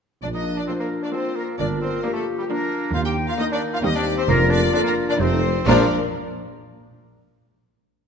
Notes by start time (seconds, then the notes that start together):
0.22 A#1 A#2 A#3 D4 F4 D5
0.34 D#4 D#5
0.56 D4 D5
0.67 F3 A#3 C4 D4 C5
0.79 A#3 A#4
1.02 D4 D5
1.12 F3 A#3 C4 D4 F4 C5
1.35 A#3 A#4
1.58 G1 G2 D4 A#4 D5
1.81 C4 C5
2.02 F3 A#3 D4 G4 A#4
2.13 A3 A4
2.18 A4
2.38 G3 G4
2.49 F3 A#3 D4 A#4
2.93 D#2 A#3 D#4 F4 F5
3.06 G4 G5
3.28 F4 F5
3.38 D#3 A#3 D4 D#4 D#5
3.51 D4 D5
3.73 F4 F5
3.83 D#2 D#3 G3 C4 D#4 G4 D#5
3.95 D4 D5
4.17 C4 C5
4.27 F1 F2 A#3 D4 F4 A#4
4.50 D4 D5
4.72 D3 A#3 D4 D5
4.83 A#3 A#4
5.09 D4 D5
5.19 F1 F2 G3 A3 C4 D#4 C5
5.66 A#1 A#2 F3 A#3 D4 F4 A#4 D5 A#5